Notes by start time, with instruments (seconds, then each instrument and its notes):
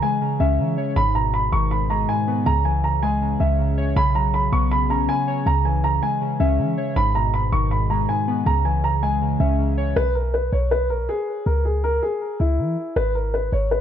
Already playing: synth keys C#3 E3
0.03 synth keys G#3, grand piano G#5
0.21 synth keys C#3
0.40 808-style bass C#2, synth keys C#4, grand piano E5
0.59 synth keys C#3, 808-style bass E3
0.78 synth keys C#5
0.96 808-style bass G#1, synth keys G#2, grand piano B5
1.15 synth keys B2, grand piano A#5
1.34 synth keys G#2, grand piano B5
1.52 808-style bass G#1, synth keys D#3, grand piano C#6
1.71 synth keys G#2, grand piano B5
1.90 synth keys G#3, grand piano A#5
2.09 synth keys G#2, grand piano G#5
2.28 synth keys B3
2.46 808-style bass C#2, synth keys C#3, grand piano A#5
2.65 synth keys E3, grand piano G#5
2.84 synth keys C#3, grand piano A#5
3.03 synth keys G#3, grand piano G#5
3.21 synth keys C#3
3.40 808-style bass C#2, synth keys C#4, grand piano E5
3.59 synth keys C#3
3.78 synth keys C#5
3.96 808-style bass B1, synth keys C#3, grand piano B5
4.15 synth keys F#3, grand piano A#5
4.34 synth keys C#3, grand piano B5
4.52 808-style bass B1, synth keys B3, grand piano C#6
4.71 synth keys C#3, grand piano B5
4.90 808-style bass A#1, synth keys C#4, grand piano A#5
5.00 808-style bass B1
5.09 synth keys C#3, grand piano G#5
5.28 synth keys C#5
5.46 808-style bass C#2, synth keys C#3, grand piano A#5
5.65 synth keys E3, grand piano G#5
5.84 synth keys C#3, grand piano A#5
6.03 synth keys G#3, grand piano G#5
6.21 synth keys C#3
6.40 808-style bass C#2, synth keys C#4, grand piano E5
6.59 synth keys C#3, 808-style bass E3
6.77 synth keys C#5
6.96 808-style bass G#1, synth keys G#2, grand piano B5
7.15 synth keys B2, grand piano A#5
7.34 synth keys G#2, grand piano B5
7.52 808-style bass G#1, synth keys D#3, grand piano C#6
7.71 synth keys G#2, grand piano B5
7.90 synth keys G#3, grand piano A#5
8.09 synth keys G#2, grand piano G#5
8.28 synth keys B3
8.46 808-style bass C#2, synth keys C#3, grand piano A#5
8.65 synth keys E3, grand piano G#5
8.84 synth keys C#3, grand piano A#5
9.03 synth keys G#3, grand piano G#5
9.21 synth keys C#3
9.40 808-style bass C#2, synth keys C#4, grand piano E5
9.59 synth keys C#3
9.78 synth keys C#5
9.96 808-style bass B1, grand piano B4
10.15 grand piano A#4
10.34 grand piano B4
10.52 808-style bass B1, grand piano C#5
10.71 grand piano B4
10.90 808-style bass A#1, grand piano A#4
11.00 808-style bass B1
11.09 grand piano G#4
11.46 808-style bass C#2, grand piano A#4
11.65 grand piano G#4
11.84 grand piano A#4
12.03 grand piano G#4
12.40 808-style bass C#2, grand piano E4
12.59 808-style bass E3
12.96 808-style bass G#1, grand piano B4
13.15 grand piano A#4
13.34 grand piano B4
13.52 808-style bass G#1, grand piano C#5
13.71 grand piano B4